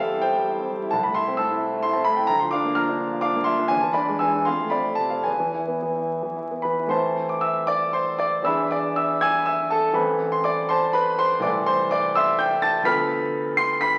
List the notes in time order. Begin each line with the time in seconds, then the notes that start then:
Already playing: E2 C4 E4 C5 E5 G5 A5
0.00 G3 A4 F5
0.14 E4
0.21 C5 G5
0.36 G3
0.48 E4
0.59 C4
0.70 G3
0.82 E4
0.91 C2 A5
1.03 A3 B5
1.14 E4 E5 C6
1.28 C4
1.37 A3 A5 E6
1.51 E4
1.74 A3
1.83 E4 C6
1.93 C4 A5
2.04 A3 B5
2.17 E4 G5
2.27 D2 A#5
2.40 F3 C6
2.51 D4 F5 D6
2.65 A#3
2.75 F3 A#5 F6
2.89 D4
3.12 F3
3.21 D4 F5 D6
3.35 A#3
3.44 F3 E5 C6
3.59 D4
3.68 E2 G#5
3.81 E3 A5
3.93 D4 D5 B5
4.09 G#3
4.19 E3 G#5 E6
4.35 D4
4.45 F2 F5 C6
4.60 A3
4.70 C4 D5 B5
4.85 A3
4.95 C3 A5
5.10 C4 F5
5.24 E2 B4 G#5
5.40 E3
5.54 E4
5.68 B3
5.82 E3
5.96 E4
6.23 E3
6.36 E4
6.51 B3
6.62 E3 B4 B5
6.79 E4
6.87 A2 E3 C4 E4 C5 A5 C6
7.29 D6
7.41 E5 E6
7.67 D5 D6
7.93 C5 C6
8.19 D5 D6
8.43 E2 E3 D4 G#4 E5 B5 E6
8.71 D5 D6
8.96 E5 E6
9.21 G#5 E6 G#6
9.46 E5 E6
9.71 A4 A5
9.93 A1 E3 C4 A4 B4 B5
10.32 C6
10.44 D5 D6
10.69 C5 A5 C6
10.93 B4 B5
11.19 C5 C6
11.40 C2 E3 A3 A4 D5 D6
11.66 C5 C6
11.91 D5 D6
12.15 E5 C6 E6
12.39 G5 G6
12.62 A5 A6
12.83 D2 F3 B3 A4 B5 F6 B6
13.57 C6 C7
13.81 B5 B6